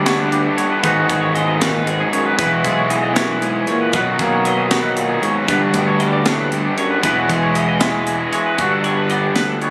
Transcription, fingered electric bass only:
0.00 0.47 D2 medium
0.84 1.07 G#1 medium
1.10 2.02 G#1 medium
2.39 2.62 E1 medium
2.65 3.57 B1 medium
3.94 4.17 B1 loud
4.19 5.12 B1 medium
5.49 5.72 G1 medium
5.74 6.67 D2 medium
7.04 7.27 E1 loud
7.29 8.22 E1 medium
8.59 9.28 G1 medium
9.37 9.70 D2 medium

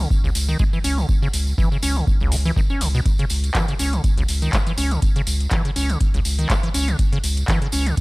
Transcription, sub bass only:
0.24 0.33 G#1 medium
0.35 0.55 C#2 medium
0.84 1.04 C#2 medium
1.33 1.54 C#2 loud
1.83 2.03 C#2 medium
2.21 2.30 G#1 medium
2.32 2.52 C#2 medium
2.81 3.01 C#2 medium
3.30 3.50 C#2 loud
3.79 3.99 C#2 medium
4.17 4.26 G#1 medium
4.29 4.49 C#2 medium
4.78 4.98 C#2 medium
5.27 5.47 C#2 loud
5.76 5.96 C#2 medium
6.14 6.23 G#1 medium
6.25 6.45 C#2 medium
6.74 6.95 C#2 medium
7.24 7.44 C#2 loud
7.73 7.93 C#2 medium

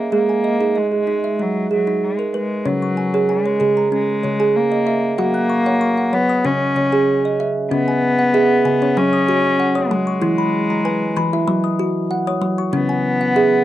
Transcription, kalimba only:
0.00 0.12 D#5 soft
0.00 0.12 E5 medium
0.12 0.44 G#3 medium
0.12 0.59 G#4 medium
0.29 0.76 G#5 soft
0.44 0.74 D#5 medium
0.61 0.92 D#4 medium
0.61 0.91 G#4 soft
0.76 1.24 D#5 soft
0.92 1.39 G#4 soft
1.07 1.39 D#4 medium
1.24 1.71 E5 medium
1.39 1.71 G#3 medium
1.71 2.19 G#4 medium
1.87 2.19 D#4 medium
2.19 2.66 A#4 soft
2.34 2.66 B4 medium
2.65 3.46 C#3 medium
2.65 2.97 C#4 medium
2.65 3.13 C#5 medium
2.82 3.29 C#6 soft
2.97 3.28 G#5 medium
3.14 3.46 G#4 medium
3.14 3.45 C#5 medium
3.29 3.77 G#5 medium
3.46 3.92 C#5 medium
3.60 4.14 C#3 medium
3.60 3.92 G#4 medium
3.77 4.24 A#5 medium
3.92 4.24 C#4 medium
4.23 4.51 C#3 medium
4.23 4.72 C#5 medium
4.40 4.72 G#4 medium
4.40 4.87 G#5 medium
4.72 5.19 D#5 medium
4.87 5.19 E5 medium
5.18 5.99 F#3 medium
5.18 5.50 F#4 medium
5.18 5.65 F#5 medium
5.34 5.81 F#6 soft
5.49 5.80 C#6 medium
5.66 5.98 C#5 medium
5.66 5.96 F#5 medium
5.81 6.30 C#6 medium
5.98 6.45 F#5 medium
6.13 6.40 F#3 medium
6.13 6.45 C#5 medium
6.30 6.61 D#6 medium
6.45 6.72 C#3 medium
6.45 6.77 C#4 medium
6.76 7.03 C#3 medium
6.76 7.25 C#5 medium
6.92 7.25 G#4 medium
6.92 7.39 G#5 medium
7.25 7.72 D#5 medium
7.40 7.71 E5 medium
7.71 8.51 C#3 medium
7.71 8.03 C#4 medium
7.88 8.34 G#5 medium
8.19 8.66 F#5 medium
8.34 8.66 G#4 medium
8.34 8.82 E5 medium
8.65 8.92 C#3 medium
8.65 9.13 G#5 medium
8.82 8.97 C#4 medium
8.82 9.14 C#5 medium
8.97 9.77 F#3 loud
9.13 9.60 D#6 medium
9.28 9.60 F#4 medium
9.59 10.08 F#5 medium
9.75 10.07 C#5 medium
9.75 10.22 D#6 medium
9.91 10.18 F#3 loud
10.07 10.39 C#6 medium
10.22 11.02 E3 medium
10.22 10.54 E4 medium
10.38 10.85 B5 medium
10.70 11.17 A#5 medium
10.85 11.17 B4 medium
10.85 11.33 G#5 medium
11.16 11.43 E3 medium
11.16 11.65 B5 medium
11.33 11.48 E4 medium
11.33 11.65 E5 medium
11.48 12.27 F#3 loud
11.64 12.10 D#6 medium
11.79 12.11 F#4 medium
12.11 12.58 F#5 medium
12.27 12.59 C#5 medium
12.27 12.73 D#6 medium
12.41 12.68 F#3 loud
12.58 12.90 C#6 medium
12.73 13.52 C#3 medium
12.73 13.05 C#4 medium
12.89 13.36 G#5 medium
13.21 13.64 F#5 medium
13.36 13.64 G#4 medium
13.36 13.64 E5 medium

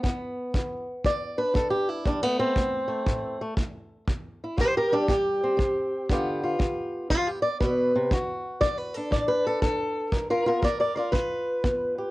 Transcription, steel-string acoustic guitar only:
0.03 0.51 G2 medium
0.03 2.04 B3 soft
0.54 1.02 D3 medium
1.04 1.52 D3 medium
1.04 1.39 D5 medium
1.38 2.04 D4 soft
1.38 1.55 B4 medium
1.54 2.02 D3 medium
1.54 1.70 A4 medium
1.70 1.89 G4 medium
1.89 2.06 E4 medium
2.06 2.53 D3 medium
2.06 2.23 G3 soft
2.06 2.22 D4 medium
2.23 2.56 A3 soft
2.23 2.39 B3 loud
2.39 3.40 C4 loud
2.57 2.87 A3 medium
2.88 3.39 A3 soft
3.06 3.54 A2 medium
3.41 3.56 A3 soft
3.57 4.04 A3 medium
4.08 4.55 C3 medium
4.44 4.60 E4 soft
4.57 4.91 G3 medium
4.57 4.76 G4 medium
4.57 4.76 C5 loud
4.77 4.92 G4 medium
4.77 4.93 A#4 medium
4.92 5.56 G3 medium
4.92 5.09 D4 medium
4.92 5.08 G4 medium
5.09 5.56 C3 medium
5.09 6.10 G4 loud
5.43 6.08 C4 soft
5.57 6.05 G3 medium
6.10 6.57 G2 medium
6.10 6.58 D3 medium
6.10 8.10 B3 soft
6.10 6.42 F4 medium
6.10 7.25 G4 medium
6.43 7.09 F4 soft
6.59 7.06 D3 medium
7.10 7.58 D3 medium
7.10 7.27 F4 loud
7.27 7.42 G4 loud
7.42 7.60 D5 medium
7.60 7.94 B2 medium
7.60 8.11 B4 medium
7.95 8.12 C3 medium
8.12 8.59 D3 medium
8.12 8.94 F#4 medium
8.61 8.95 D4 medium
8.61 8.78 D5 loud
8.78 8.95 B4 medium
8.94 9.62 D4 medium
8.94 9.12 A4 loud
9.11 9.59 A2 medium
9.11 9.28 D5 medium
9.28 9.45 B4 loud
9.47 9.61 A4 loud
9.62 10.12 D4 medium
9.62 10.13 A4 loud
10.12 10.60 G3 medium
10.12 10.29 F4 medium
10.12 10.29 A#4 medium
10.30 10.45 F4 medium
10.30 10.46 A#4 medium
10.46 10.63 B3 soft
10.46 10.63 F4 medium
10.46 10.61 A#4 medium
10.62 11.11 B3 medium
10.62 10.79 A#4 medium
10.62 10.79 D5 medium
10.80 10.94 A#4 medium
10.80 10.96 D5 medium
10.96 12.11 F4 soft
10.96 11.13 A#4 medium
10.96 11.11 D5 medium
11.12 11.61 D3 medium
11.12 12.11 B4 loud
11.64 12.11 B3 medium
11.98 12.11 G4 soft

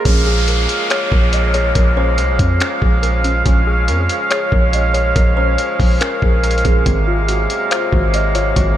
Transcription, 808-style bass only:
0.05 0.67 A#1 loud
1.12 1.73 A#1 loud
1.75 2.20 A#1 loud
2.18 2.30 C2 medium
2.29 2.39 A#1 loud
2.39 2.60 F2 loud
2.82 3.43 A#1 loud
3.46 3.90 A#1 loud
3.88 4.08 F2 loud
4.52 5.13 A#1 loud
5.16 5.57 A#1 loud
5.80 6.00 A#1 loud
6.22 6.63 A#1 loud
6.65 6.85 A#1 loud
6.86 7.47 G#1 loud
7.93 8.54 G#1 loud
8.56 8.77 G#1 loud

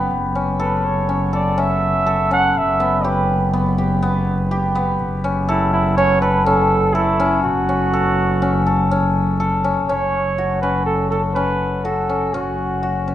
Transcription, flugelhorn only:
0.60 0.87 B4 medium
0.85 1.34 C#5 medium
1.35 1.61 D5 medium
1.60 2.32 E5 loud
2.33 2.59 F#5 loud
2.58 3.09 E5 loud
3.07 3.55 B4 medium
5.49 5.72 E4 medium
5.73 5.96 E4 medium
5.97 6.20 C#5 loud
6.21 6.47 B4 medium
6.46 6.96 A4 loud
6.94 7.43 E4 medium
7.43 9.36 F#4 loud
9.88 10.58 C#5 loud
10.61 10.85 B4 medium
10.86 11.09 A4 medium
11.11 11.22 A4 medium
11.35 11.86 B4 medium
11.85 12.35 A4 medium
12.34 13.15 F#4 medium

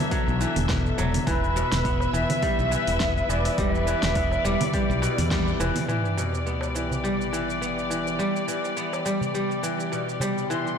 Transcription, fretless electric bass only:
0.28 0.44 B1 loud
0.57 0.90 E1 loud
0.99 1.18 E1 medium
1.27 1.62 E1 loud
1.73 2.06 E1 medium
2.14 2.24 E1 loud
2.59 2.75 B1 medium
2.88 3.21 E1 loud
3.29 3.48 E1 medium
3.58 3.93 E1 loud
4.03 4.37 E1 medium
4.45 4.55 E1 loud
4.90 5.06 B1 loud
5.19 5.52 E2 medium
5.60 5.70 E1 loud

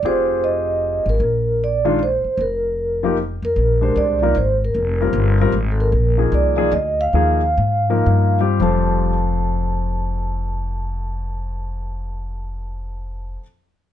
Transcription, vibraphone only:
0.06 0.45 C5 medium
0.44 1.04 D#5 medium
1.09 1.63 A#4 medium
1.64 2.02 D5 medium
2.03 2.42 C5 medium
2.41 3.14 A#4 medium
3.45 3.98 A#4 medium
3.97 4.37 D5 medium
4.37 4.48 C5 medium
4.65 4.99 A#4 medium
5.72 5.79 A4 medium
5.80 6.29 A#4 medium
6.34 6.74 D5 medium
6.73 7.00 D#5 medium
7.01 8.38 F5 medium
8.62 13.38 A5 medium

